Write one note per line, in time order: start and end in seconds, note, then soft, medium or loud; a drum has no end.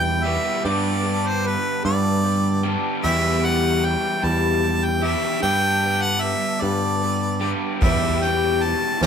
0.00 0.22 E2 medium
0.00 0.36 E2 medium
0.00 0.23 B2 medium
0.00 0.23 E3 medium
0.00 0.25 E3 medium
0.00 0.25 G3 medium
0.00 0.26 G3 soft
0.00 0.24 B3 loud
0.00 0.25 E4 medium
0.00 0.23 G4 medium
0.00 0.24 G4 medium
0.00 0.26 G5 medium
0.24 0.63 E2 medium
0.24 0.63 B2 medium
0.24 0.62 G3 soft
0.24 0.66 B3 medium
0.24 0.65 E4 soft
0.24 0.64 G4 medium
0.24 0.64 E5 medium
0.28 0.63 E3 soft
0.63 2.61 G2 medium
0.63 1.55 G2 medium
0.63 2.62 D3 medium
0.63 1.04 G3 medium
0.63 1.05 B3 medium
0.63 1.04 D4 medium
0.63 2.63 G4 loud
0.63 1.02 A4 medium
0.63 1.29 D5 medium
1.03 1.44 B3 soft
1.03 1.45 D4 medium
1.03 1.44 A4 medium
1.27 1.48 C5 medium
1.44 1.84 G3 medium
1.44 1.84 B3 medium
1.44 1.83 D4 medium
1.44 1.82 A4 medium
1.44 1.84 B4 medium
1.83 2.75 G2 loud
1.83 2.22 G3 soft
1.83 2.23 B3 medium
1.83 2.24 D4 medium
1.83 2.23 A4 medium
1.83 2.70 D5 medium
2.23 2.63 G3 medium
2.23 2.64 B3 medium
2.23 2.64 D4 medium
2.23 2.62 A4 medium
2.63 3.02 G2 medium
2.63 3.02 D3 medium
2.63 3.04 G3 medium
2.63 3.04 B3 soft
2.63 3.04 D4 soft
2.63 3.05 G4 medium
2.63 3.04 A4 soft
3.03 3.43 E2 medium
3.03 3.95 E2 loud
3.03 3.44 B2 medium
3.03 3.44 E3 medium
3.03 3.44 G3 medium
3.03 3.43 E4 medium
3.03 3.42 G4 medium
3.03 3.46 E5 loud
3.43 3.81 E3 soft
3.43 3.82 G3 medium
3.43 3.83 E4 soft
3.43 3.83 G4 medium
3.43 3.87 F#5 medium
3.82 4.22 E3 medium
3.82 4.22 G3 medium
3.82 4.21 E4 medium
3.82 4.21 G4 medium
3.82 4.26 G5 medium
4.22 5.14 E2 loud
4.22 4.64 E2 medium
4.22 4.63 B2 medium
4.22 4.60 E3 medium
4.22 4.62 G3 medium
4.22 4.62 E4 medium
4.22 4.63 G4 medium
4.22 4.86 A5 medium
4.62 5.02 E3 medium
4.62 5.03 G3 medium
4.62 5.01 E4 medium
4.62 5.00 G4 medium
4.85 5.05 G5 medium
5.01 5.40 E2 medium
5.01 5.40 B2 medium
5.01 5.42 E3 soft
5.01 5.41 G3 soft
5.01 5.43 E4 soft
5.01 5.42 G4 soft
5.01 5.42 E5 medium
5.40 7.38 G2 medium
5.40 6.33 G2 medium
5.40 7.38 D3 medium
5.40 5.83 G3 medium
5.40 5.83 B3 medium
5.40 5.83 D4 medium
5.40 7.40 G4 loud
5.40 6.03 G5 loud
5.45 5.80 A4 medium
5.82 6.22 B3 soft
5.82 6.23 D4 medium
5.82 6.22 A4 soft
6.02 6.22 F#5 loud
6.21 6.62 G3 medium
6.21 6.62 B3 soft
6.21 6.61 D4 medium
6.21 6.63 E5 medium
6.25 6.61 A4 medium
6.62 7.53 G2 medium
6.62 7.00 G3 medium
6.62 7.01 B3 medium
6.62 7.02 D4 medium
6.62 7.02 A4 medium
6.62 7.51 D5 medium
7.01 7.41 G3 medium
7.01 7.42 B3 medium
7.01 7.41 D4 medium
7.01 7.40 A4 medium
7.41 7.80 G2 medium
7.41 7.80 D3 medium
7.41 7.82 G3 medium
7.41 7.82 B3 soft
7.41 7.82 D4 soft
7.41 7.84 G4 medium
7.41 7.81 A4 soft
7.81 8.21 E2 medium
7.81 8.72 E2 medium
7.81 8.21 B2 medium
7.81 8.21 E3 medium
7.81 8.22 G3 medium
7.81 8.21 E4 medium
7.81 8.19 G4 medium
7.81 8.24 E5 medium
7.81 kick loud
7.81 closed hi-hat medium
8.21 8.60 G3 medium
8.21 8.61 E4 soft
8.21 8.61 G4 soft
8.21 8.65 G5 medium
8.21 closed hi-hat medium
8.25 8.59 E3 soft
8.60 9.00 E3 soft
8.60 8.99 G3 medium
8.60 8.99 E4 medium
8.60 8.99 G4 medium
8.60 9.02 A5 loud
8.60 closed hi-hat medium
9.00 9.06 E2 loud
9.00 9.06 E2 medium
9.00 9.06 B2 medium
9.00 9.06 E3 medium
9.00 9.06 G3 medium
9.00 9.06 E4 medium
9.00 9.06 G4 medium
9.00 9.06 B5 loud
9.00 snare loud
9.00 closed hi-hat medium